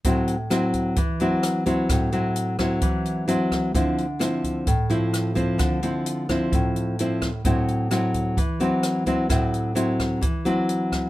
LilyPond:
<<
  \new Staff \with { instrumentName = "Nylon-string guitar" } { \time 4/4 \key a \minor \tempo 4 = 130 << { <fis c' e'>8 r8 <fis c' e'>4 r8 <fis c' e'>4 <fis c' e'>8~ | <fis c' e'>8 <fis c' e'>4 <fis c' e'>4. <fis c' e'>4 | <f c' e'>8 r8 <f c' e'>4 r8 <f c' e'>4 <f c' e'>8~ | <f c' e'>8 <f c' e'>4 <f c' e'>4. <f c' e'>8 r8 |
<fis c' e'>4 <fis c' e'>4 r8 <fis c' e'>4 <fis c' e'>8 | <fis c' e'>4 <fis c' e'>4 r8 <fis c' e'>4. | } \\ { a,2 e2 | a,2 e2 | d2 a,2 | d2 a,2 |
a,2 e2 | a,2 e2 | } >> }
  \new DrumStaff \with { instrumentName = "Drums" } \drummode { \time 4/4 <hh bd>8 hh8 <hh ss>8 <hh bd>8 <hh bd>8 hh8 <hh ss>8 <hh bd>8 | <hh bd ss>8 hh8 hh8 <hh bd ss>8 <hh bd>8 hh8 hh8 <hh bd ss>8 | <hh bd>8 hh8 <hh ss>8 <hh bd>8 <hh bd>8 hh8 <hh ss>8 <hh bd>8 | <hh bd ss>8 hh8 hh8 <hh bd ss>8 <hh bd>8 hh8 hh8 <hh bd ss>8 |
<hh bd>8 hh8 <hh ss>8 <hh bd>8 <hh bd>8 hh8 <hh ss>8 <hh bd>8 | <hh bd ss>8 hh8 hh8 <hh bd ss>8 <hh bd>8 hh8 hh8 <hh bd ss>8 | }
>>